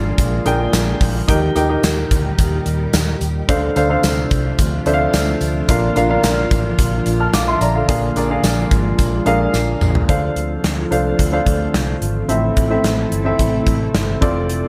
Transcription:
Already playing: fingered electric bass G#1, grand piano A#2 D4 G#4 A#4 D5 F5, string machine D3 F3 G#3 A#3 F4
0.18 fingered electric bass A#1, kick, closed hi-hat, tambourine
0.45 fingered electric bass A#1, grand piano D4 G#4 A#4 G5, closed hi-hat, tambourine
0.73 fingered electric bass A#1, snare, closed hi-hat, tambourine
1.01 fingered electric bass A#1, kick, open hi-hat, tambourine
1.28 fingered electric bass D#2, string machine A#2 D#3 G3 D#4 G4, grand piano D#3 D#4 G4 A#4 G5, kick, closed hi-hat
1.55 fingered electric bass D#2, grand piano D#4 G4 A#4 G5, closed hi-hat, tambourine
1.69 grand piano D#4 G4 A#4 G5
1.83 fingered electric bass D#2, snare, closed hi-hat, tambourine
2.11 fingered electric bass D2, kick, closed hi-hat, tambourine
2.38 fingered electric bass D#2, kick, closed hi-hat, tambourine
2.66 fingered electric bass D#2, closed hi-hat, tambourine
2.93 fingered electric bass D#2, snare, closed hi-hat, tambourine
3.21 fingered electric bass D#2, closed hi-hat, tambourine
3.49 fingered electric bass D2, string machine C3 F3 A3 D4 F4, grand piano D3 D4 A4 C5 F5, kick, closed hi-hat, tambourine
3.76 fingered electric bass D2, grand piano D4 A4 C5 F5, closed hi-hat, tambourine
3.89 grand piano D4 A4 C5 F5
4.03 fingered electric bass D2, snare, closed hi-hat, tambourine
4.31 fingered electric bass C2, kick, closed hi-hat, tambourine
4.59 fingered electric bass D2, kick, closed hi-hat, tambourine
4.86 fingered electric bass D2, grand piano D4 A4 C5 E5, closed hi-hat, tambourine
4.94 grand piano F5
5.13 fingered electric bass D2, snare, closed hi-hat, tambourine
5.41 fingered electric bass D2, closed hi-hat, tambourine
5.68 fingered electric bass A#1, string machine A#2 D3, grand piano A#2 D4 F4 A#4 F5, kick, closed hi-hat, tambourine
5.96 fingered electric bass A#1, grand piano D4 F4 A#4 F5, closed hi-hat, tambourine
6.09 grand piano D4 F4 A#4 F5
6.23 fingered electric bass A#1, snare, closed hi-hat, tambourine
6.51 fingered electric bass A1, kick, closed hi-hat, tambourine
6.79 fingered electric bass A#1, kick, closed hi-hat, tambourine
7.06 fingered electric bass A#1, closed hi-hat, tambourine
7.20 grand piano A5 F6
7.33 fingered electric bass A#1, grand piano F5 D6, snare, closed hi-hat, tambourine
7.48 grand piano E5 C6
7.61 fingered electric bass A#1, grand piano D5 A#5, closed hi-hat, tambourine
7.75 grand piano A4 F5
7.88 fingered electric bass A#1, grand piano A#2 D4 G#4 A#4 F5, string machine G#3 A#3, kick, closed hi-hat, tambourine
8.16 fingered electric bass A#1, grand piano D4 G#4 A#4 D5, closed hi-hat, tambourine
8.30 grand piano D4 G#4 A#4 F5
8.43 fingered electric bass A#1, snare, closed hi-hat, tambourine
8.71 fingered electric bass G#1, kick, closed hi-hat, tambourine
8.99 fingered electric bass A#1, kick, closed hi-hat, tambourine
9.26 fingered electric bass A#1, grand piano D4 G#4 A#4 F5, closed hi-hat
9.54 fingered electric bass A#1, snare, tambourine
9.81 fingered electric bass A#1, mid tom, tambourine
9.95 floor tom
10.08 fingered electric bass D2, grand piano D3 D4 A4 C5 F5, string machine D3 F3 A3 C4 F4, kick, closed hi-hat
10.36 fingered electric bass D2, closed hi-hat
10.64 fingered electric bass D2, snare, closed hi-hat
10.91 fingered electric bass C2, grand piano D4 A4 C5 F5, closed hi-hat
11.19 fingered electric bass D2, kick, closed hi-hat
11.32 grand piano D4 A4 C5 F5
11.46 fingered electric bass D2, kick, closed hi-hat
11.74 fingered electric bass C2, snare, closed hi-hat
12.01 fingered electric bass G#1, closed hi-hat
12.28 fingered electric bass A1, grand piano A2 C4 E4 A4 E5, string machine C3 E3 E4 A4, closed hi-hat
12.57 fingered electric bass A1, kick, closed hi-hat
12.70 grand piano C4 E4 A4 E5
12.84 fingered electric bass A1, snare, closed hi-hat
13.12 fingered electric bass G1, closed hi-hat
13.25 grand piano C4 E4 A4 E5
13.39 fingered electric bass A1, kick, closed hi-hat
13.67 fingered electric bass A1, kick, closed hi-hat
13.94 fingered electric bass G1, snare, closed hi-hat
14.21 fingered electric bass F1, string machine F3 D4 F4, grand piano C4 F4 A4 D5, kick, closed hi-hat
14.49 closed hi-hat

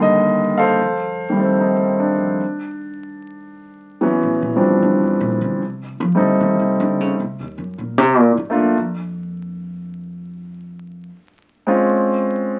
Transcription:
Already playing: grand piano D3 D#3 G3 A#3 A#4 F5
0.00 upright bass D#2, grand piano D#5
0.58 grand piano A4 C5 F5
0.79 upright bass F2
1.29 grand piano D#3 G3
1.36 grand piano A3 C4
1.60 grand piano D#4
1.87 upright bass A2
2.00 grand piano D4
2.16 upright bass F2
4.01 grand piano E3 F#3 B3 C#4
4.23 upright bass A2
4.42 upright bass A#2
4.56 grand piano F3 G3 C4 D4
4.63 upright bass C3
4.82 upright bass D3
5.03 upright bass F2
5.21 upright bass A#2
5.41 upright bass D3
5.61 upright bass C3
6.00 upright bass F3
6.15 grand piano G3 A3 C4 D#4
6.20 upright bass D3
6.41 upright bass D#3
6.59 upright bass C3
6.80 upright bass D3
7.01 upright bass C#3
7.20 upright bass C3
7.40 upright bass D#2
7.58 upright bass F#2
7.78 upright bass A#2
7.98 upright bass C3
8.19 upright bass A#2
8.37 upright bass G#2
8.50 grand piano A3 A#3 D4 F4
8.58 upright bass F#2
8.77 upright bass F2
11.67 grand piano G#3 C4 C#4 F4

